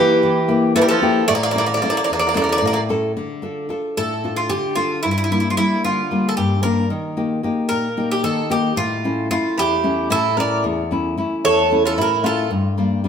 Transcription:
Already playing: bouzouki E3 G4, nylon-string guitar A#3 E4 G4
0.23 nylon-string guitar E3
0.48 nylon-string guitar A#3 E4 G4
0.76 bouzouki E3 A4, nylon-string guitar E4
0.82 bouzouki G3 A#4
0.89 bouzouki F3 A4
1.02 nylon-string guitar A#3 E4 G4
1.28 nylon-string guitar A2, bouzouki A3 D5
1.35 bouzouki A#3 D5
1.43 bouzouki A#3 D5
1.51 bouzouki A#3 D5, nylon-string guitar C#4 E4
1.56 nylon-string guitar A4, bouzouki D5
1.60 bouzouki A#3
1.66 bouzouki A#3 D5
1.74 bouzouki A#3 D5
1.82 bouzouki A#3 D5, nylon-string guitar C#4 E4 A4
1.90 bouzouki A#3 D5
1.97 bouzouki A#3 D5
2.04 bouzouki A#3 D5
2.10 nylon-string guitar E2, bouzouki A#3 D5
2.19 bouzouki A#3 D5
2.27 bouzouki A#3 D5
2.34 bouzouki A#3 D5, nylon-string guitar C#4 E4 A4
2.42 bouzouki A#3 D5
2.49 bouzouki A#3 D5
2.57 bouzouki A#3 D5
2.62 nylon-string guitar A2, bouzouki A#3
2.67 bouzouki D5
2.73 bouzouki A#3 D5
2.89 nylon-string guitar C#4 E4 A4
3.17 nylon-string guitar D3
3.42 nylon-string guitar D4 F4 A4
3.69 nylon-string guitar D4 F4 A4
3.97 nylon-string guitar A2, bouzouki A4
4.24 nylon-string guitar D4 F4 A4
4.36 bouzouki F4
4.49 nylon-string guitar D3, bouzouki G4
4.75 nylon-string guitar D4 F4 A4, bouzouki F4
5.03 nylon-string guitar G2, bouzouki E4
5.11 bouzouki E4
5.18 bouzouki E4
5.24 bouzouki E4
5.31 nylon-string guitar G3 A#3 D4, bouzouki E4
5.40 bouzouki E4
5.50 bouzouki F4
5.57 nylon-string guitar G3 A#3 D4, bouzouki E4
5.85 nylon-string guitar D3, bouzouki F4
6.11 nylon-string guitar G3 A#3 D4
6.29 bouzouki A4
6.37 nylon-string guitar G2, bouzouki G4
6.63 nylon-string guitar G3 A#3 D4, bouzouki A#4
6.90 nylon-string guitar D#3
7.17 nylon-string guitar A#3 D#4 G4
7.43 nylon-string guitar A#3 D#4 G4
7.69 nylon-string guitar A#2, bouzouki A#4
7.97 nylon-string guitar A#3 D#4 G4
8.12 bouzouki G4
8.23 nylon-string guitar D#3, bouzouki A4
8.50 nylon-string guitar A#3 D#4 G4, bouzouki G4
8.76 nylon-string guitar A2, bouzouki F4
9.04 nylon-string guitar A3 C#4 E4
9.30 nylon-string guitar A3 C#4 E4, bouzouki F4
9.58 nylon-string guitar E2, bouzouki E4 G4
9.84 nylon-string guitar A3 C#4 E4
10.10 nylon-string guitar A2, bouzouki E4 A4
10.37 nylon-string guitar A3 C#4 E4, bouzouki A#4 D5
10.64 nylon-string guitar E2
10.91 nylon-string guitar A3 C#4 E4
11.17 nylon-string guitar A3 C#4 E4
11.45 nylon-string guitar E2, bouzouki A4 C#5
11.71 nylon-string guitar A3 C#4 E4
11.85 bouzouki F4 A4
11.98 nylon-string guitar A2, bouzouki E4 A#4
12.23 nylon-string guitar A3 C#4 E4, bouzouki F4 A4
12.50 nylon-string guitar G2
12.78 nylon-string guitar G3 A#3 D4
13.04 nylon-string guitar G3 A#3 D4

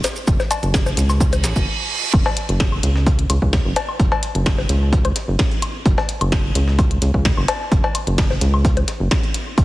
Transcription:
0.04 snare, closed hi-hat, high bongo, maracas
0.16 maracas
0.27 analog synth bass F#1, kick, closed hi-hat, maracas
0.40 snare, high bongo, maracas
0.51 closed hi-hat, cowbell, low woodblock, maracas
0.63 analog synth bass F#1, closed hi-hat, maracas
0.74 kick, snare, closed hi-hat, maracas
0.86 snare, high bongo, maracas
0.97 analog synth bass C#2, closed hi-hat, maracas
1.09 snare, low woodblock, maracas
1.20 kick, closed hi-hat, reverse cymbal, maracas
1.33 closed hi-hat, high bongo, maracas
1.44 analog synth bass A1, snare, closed hi-hat, maracas
1.56 analog synth bass F#1, kick, maracas
2.13 analog synth bass F#1, kick, closed hi-hat, low woodblock
2.26 snare, cowbell, high bongo
2.37 closed hi-hat
2.49 analog synth bass F#1, closed hi-hat
2.60 kick, snare, closed hi-hat
2.72 low woodblock
2.83 analog synth bass C#2, closed hi-hat
2.96 snare
3.06 kick, closed hi-hat
3.19 closed hi-hat
3.30 analog synth bass C#2, closed hi-hat, low woodblock
3.42 analog synth bass C#2, kick
3.53 kick, snare, closed hi-hat
3.65 analog synth bass F#1
3.76 closed hi-hat, cowbell, high bongo
3.89 low woodblock
4.00 analog synth bass F#1, kick, closed hi-hat
4.12 cowbell, high bongo
4.23 closed hi-hat
4.35 analog synth bass F#1, closed hi-hat
4.46 kick, snare, closed hi-hat, low woodblock
4.58 snare, high bongo
4.69 analog synth bass C#2, closed hi-hat
4.93 kick, closed hi-hat
5.05 closed hi-hat, high bongo, low woodblock
5.16 snare, closed hi-hat
5.28 analog synth bass F#1
5.39 kick, snare, closed hi-hat
5.51 closed hi-hat
5.62 closed hi-hat, low woodblock
5.86 analog synth bass F#1, kick, closed hi-hat
5.98 snare, cowbell, high bongo
6.09 closed hi-hat
6.21 analog synth bass F#1, closed hi-hat, low woodblock
6.32 kick, snare, closed hi-hat
6.55 analog synth bass C#2, closed hi-hat
6.68 snare
6.79 kick, closed hi-hat, low woodblock
6.91 closed hi-hat
7.02 analog synth bass C#2, closed hi-hat
7.14 analog synth bass C#2, kick
7.25 kick, snare, closed hi-hat
7.37 analog synth bass F#1, low woodblock
7.48 closed hi-hat, cowbell, high bongo
7.72 analog synth bass F#1, kick, closed hi-hat
7.84 cowbell, high bongo
7.95 closed hi-hat, low woodblock
8.07 analog synth bass F#1, closed hi-hat
8.18 kick, snare, closed hi-hat
8.30 snare, high bongo
8.41 analog synth bass C#2, closed hi-hat
8.54 low woodblock
8.65 kick, closed hi-hat
8.77 closed hi-hat, high bongo
8.88 snare, closed hi-hat
9.00 analog synth bass F#1
9.11 kick, snare, closed hi-hat, low woodblock
9.23 closed hi-hat
9.34 closed hi-hat
9.58 analog synth bass F#1, kick, closed hi-hat, low woodblock

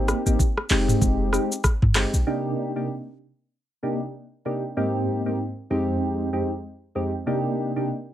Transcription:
Already playing: 808-style bass G#1, synth keys A#3 C4 D#4 G4
0.08 cross-stick, shaker
0.26 808-style bass G#1, synth keys A#3 C4 D#4 G4, shaker
0.39 kick, shaker
0.57 cross-stick
0.69 808-style bass F1, synth keys G#3 C4 D#4 G4, clap, open hi-hat, shaker
0.88 mid tom, shaker
1.02 808-style bass F1, kick, shaker
1.33 synth keys G#3 C4 D#4 G4, cross-stick, shaker
1.52 shaker
1.64 kick, cross-stick, shaker
1.82 808-style bass G1, mid tom
1.94 synth keys G#3 C4 D#4 G4, cross-stick, clap, open hi-hat, shaker
2.14 808-style bass A#1, shaker
2.26 synth keys C3 A#3 D4 D#4 G4
2.76 synth keys C3 A#3 D4 D#4 G4
3.83 synth keys C3 A#3 D4 D#4 G4
4.45 synth keys C3 A#3 D4 D#4 G4
4.77 synth keys G#2 A#3 C4 D#4 G4
5.26 synth keys G#2 A#3 C4 D#4 G4
5.70 synth keys F2 G#3 C4 D#4 G4
6.33 synth keys F2 G#3 C4 D#4 G4
6.95 synth keys F2 G#3 C4 D#4 G4
7.26 synth keys C3 A#3 D4 D#4 G4
7.76 synth keys C3 A#3 D4 D#4 G4

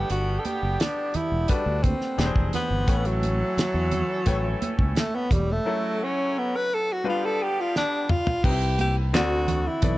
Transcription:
Already playing: horn section D3 G3 B3 G4, grand piano G3 A4 B4 F#5, tenor saxophone G4
0.10 fingered electric bass G1, tenor saxophone F#4, closed hi-hat, muted conga
0.39 tenor saxophone A4
0.45 tenor saxophone G4, closed hi-hat, muted conga, high conga
0.63 fingered electric bass F#1
0.80 tenor saxophone D4, snare, closed hi-hat, muted conga
1.14 tenor saxophone E4, muted fingered electric bass stroke, closed hi-hat, muted conga, low conga
1.32 fingered electric bass E1
1.48 grand piano G3 F#4 A4 B4, tenor saxophone D4, kick, closed hi-hat
1.66 fingered electric bass D2
1.83 tenor saxophone C4, kick, closed hi-hat, high conga
2.01 snare
2.18 fingered electric bass E1, horn section D3 G#3 C4 G#4, grand piano E3 D4 G4 G#4 B4, snare, closed hi-hat, muted conga, high conga
2.26 grand piano C5
2.36 fingered electric bass F1, kick
2.53 tenor saxophone B3, closed hi-hat, high conga, low conga
2.71 fingered electric bass G1
2.87 fingered electric bass A1, horn section E3 A3 C#4 A4, grand piano A3 B4 C#5 G5, kick, closed hi-hat, muted conga
3.05 tenor saxophone F#3, closed hi-hat
3.23 closed hi-hat, high conga
3.57 muted fingered electric bass stroke, snare, closed hi-hat, muted conga
3.74 fingered electric bass E2
3.91 closed hi-hat, muted conga, low conga
4.26 fingered electric bass A1, grand piano A3 B4 C#5 G5, kick, closed hi-hat, muted conga
4.62 closed hi-hat, muted conga, high conga
4.79 fingered electric bass C#2, kick
4.95 tenor saxophone A3, snare, closed hi-hat, muted conga, high conga
5.15 tenor saxophone B3
5.31 fingered electric bass E1, tenor saxophone G3, kick, closed hi-hat, muted conga, high conga, low conga
5.52 tenor saxophone A3
5.65 horn section C#3 F#3 A3 F#4, grand piano F#3 C#4 E4 A4
6.04 tenor saxophone C#4
6.38 tenor saxophone B3
6.56 tenor saxophone B4
6.74 tenor saxophone A4
6.93 tenor saxophone F#4
7.04 horn section D3 G3 B3 G4, grand piano G3 D4 F4 B4
7.09 tenor saxophone F4
7.25 tenor saxophone A4
7.43 tenor saxophone G4
7.60 tenor saxophone F4
7.76 tenor saxophone D4, snare
8.09 tenor saxophone F4, mid tom
8.27 floor tom
8.43 fingered electric bass C2, grand piano C3 C4 D#4 B4, tenor saxophone G4, kick, crash, muted conga
8.51 grand piano E4
8.61 closed hi-hat
8.79 tenor saxophone G4, closed hi-hat, muted conga, high conga
9.13 fingered electric bass D2, grand piano D3 C4 F#4 D5, tenor saxophone F#4, snare, closed hi-hat
9.48 closed hi-hat, low conga
9.67 tenor saxophone E4
9.82 fingered electric bass B1, grand piano B2 B3 A4 D5, kick, closed hi-hat, low conga

